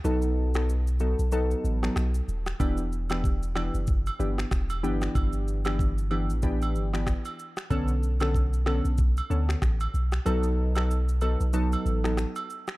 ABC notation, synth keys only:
X:1
M:4/4
L:1/16
Q:"Swing 16ths" 1/4=94
K:Bm
V:1 name="Synth keys"
[F,B,^DA]3 [F,B,DA] z2 [F,B,DA] z [F,B,DA]3 [F,B,DA] z4 | [E,B,DG] z2 [E,B,DG] z2 [E,B,DG] z3 [E,B,DG] z3 [E,B,DG]2- | [E,B,DG]3 [E,B,DG] z2 [E,B,DG] z [E,B,DG]3 [E,B,DG] z4 | [D,B,CA] z2 [D,B,CA] z2 [D,B,CA] z3 [D,B,CA] z4 z |
[F,B,^DA]3 [F,B,DA] z2 [F,B,DA] z [F,B,DA]3 [F,B,DA] z4 |]